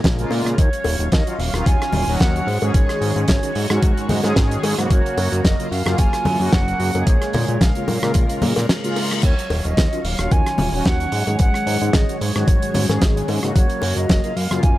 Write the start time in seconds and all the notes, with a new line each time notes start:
Already playing: G#3 C#4 A#4
0.04 A#1, kick, snare, closed hi-hat
0.19 C#3 G#3 A#3 F4, closed hi-hat
0.30 A#2, open hi-hat, high bongo
0.45 A#2, cross-stick, closed hi-hat
0.58 D#2 F#3 C#5 F5, kick, closed hi-hat
0.73 closed hi-hat
0.84 D#1, open hi-hat, high bongo
0.99 D#1, closed hi-hat
1.12 D#2 D#5, kick, snare, closed hi-hat
1.26 D#3 F#3 C#4 F4, closed hi-hat
1.39 D#1 F5, open hi-hat
1.54 D#1 D#3 F#3 C#4 F4, cross-stick, closed hi-hat
1.66 D#2 G#5, kick, closed hi-hat
1.82 cross-stick, closed hi-hat
1.92 D#1, open hi-hat, high conga, low conga
2.08 D#1 D#3 F#3 C#4 F#4, open hi-hat
2.20 D#2 F#5, kick, snare, closed hi-hat
2.36 closed hi-hat
2.47 G#2 G#3 F#4, open hi-hat
2.61 G#2 D#3 G#3 C#4 G#4, closed hi-hat, high bongo
2.74 G#1 C#5, kick, closed hi-hat
2.89 cross-stick, closed hi-hat
3.01 G#2, open hi-hat
3.16 G#2, closed hi-hat
3.28 G#1 C#5, kick, snare, closed hi-hat
3.43 D#3 G#3 C#4 F#4, closed hi-hat
3.55 G#2, open hi-hat
3.70 G#2 D#3 G#3 C#4 F#4, cross-stick, closed hi-hat
3.82 G#1, kick, closed hi-hat
3.97 G#2, closed hi-hat
4.09 G#2, open hi-hat, high conga, low conga
4.24 G#2 D#3 G#3 C#4 G#4, snare, closed hi-hat, high bongo
4.36 G#1, kick, snare, closed hi-hat
4.51 closed hi-hat
4.63 G#2, open hi-hat, high bongo
4.78 G#2 C#3 F#3 A#3 F#4, cross-stick, closed hi-hat
4.90 F#1 F#3 A#4 C#5 F6, kick, closed hi-hat
5.06 closed hi-hat
5.17 F#2, open hi-hat, high bongo
5.32 F#2, closed hi-hat
5.45 F#1 D#5, kick, snare, closed hi-hat
5.59 C#3 F#3 A#3 F4, closed hi-hat
5.71 F#2 F5, open hi-hat
5.86 F#2 C#3 F#3 A#3 F4, cross-stick, closed hi-hat
5.98 F#1 G#5, kick, closed hi-hat
6.13 cross-stick, closed hi-hat
6.25 F#2, open hi-hat, high conga, low conga
6.40 F#2 C#3 F#3 A#3 F#4, open hi-hat
6.52 F#1 F#5, kick, snare, closed hi-hat
6.68 closed hi-hat
6.80 F#2, open hi-hat
6.94 F#2 C#3 G#3 A#3 G#4, closed hi-hat, high bongo
7.06 A#1 G#3 C#4 A#4 C#5, kick, closed hi-hat
7.22 cross-stick, closed hi-hat
7.33 A#2, open hi-hat, high bongo, low conga
7.48 A#2, closed hi-hat
7.61 A#1 F5, kick, snare, closed hi-hat
7.75 C#3 G#3 A#3 F4, closed hi-hat
7.88 A#2, open hi-hat, high bongo, high conga
8.02 A#2 C#3 G#3 A#3 F4, cross-stick, closed hi-hat
8.14 A#1, kick, closed hi-hat, reverse cymbal
8.29 A#2, closed hi-hat
8.42 A#2, open hi-hat, high conga, low conga
8.56 A#2, snare, closed hi-hat, high bongo
8.69 snare, closed hi-hat
8.84 C#3 G#3 A#3 F4, closed hi-hat
8.96 open hi-hat, high bongo
9.11 cross-stick, closed hi-hat
9.23 D#2 F#3 C#5 F5, kick, closed hi-hat, crash
9.39 closed hi-hat
9.50 D#1, open hi-hat, high bongo
9.65 D#1 D#5, closed hi-hat
9.77 D#2, kick, snare, closed hi-hat
9.92 D#3 F#3 C#4 F4, closed hi-hat
10.04 D#1 F5, open hi-hat
10.19 D#1 D#3 F#3 C#4 F4, cross-stick, closed hi-hat
10.31 D#2 G#5, kick, closed hi-hat
10.46 cross-stick, closed hi-hat
10.58 D#1, open hi-hat, high conga, low conga
10.73 D#1 D#3 F#3 C#4 F#4, open hi-hat
10.85 D#2 F#5, kick, snare, closed hi-hat
11.00 closed hi-hat
11.12 G#2 F#3 G#3, open hi-hat
11.27 G#2 D#3 G#3 C#4 G#4, closed hi-hat, high bongo
11.39 G#1 F#5, kick, closed hi-hat
11.54 cross-stick, closed hi-hat
11.67 G#2, open hi-hat
11.82 G#2, closed hi-hat
11.93 G#1 D#5, kick, snare, closed hi-hat
12.08 D#3 G#3 C#4 F#4, closed hi-hat
12.21 G#2 C#5, open hi-hat
12.35 G#2 D#3 G#3 C#4 F#4, cross-stick, closed hi-hat
12.48 G#1, kick, closed hi-hat
12.62 G#2, closed hi-hat
12.74 G#2, open hi-hat, high conga, low conga
12.89 G#2 D#3 G#3 C#4 G#4, snare, closed hi-hat, high bongo
13.01 G#1, kick, snare, closed hi-hat
13.17 closed hi-hat
13.28 G#2, open hi-hat, high bongo
13.42 G#2 C#3 F#3 A#3 F#4, cross-stick, closed hi-hat
13.55 F#1 A#3 C#5 F5, kick, closed hi-hat
13.70 closed hi-hat
13.82 F#2, open hi-hat, high bongo
13.96 F#2 D#5, closed hi-hat
14.09 F#1, kick, snare, closed hi-hat
14.24 C#3 F#3 A#3 F4, closed hi-hat
14.36 F#2 F5, open hi-hat
14.50 F#2 C#3 F#3 A#3 F4, cross-stick, closed hi-hat
14.63 F#1 G#5, kick, closed hi-hat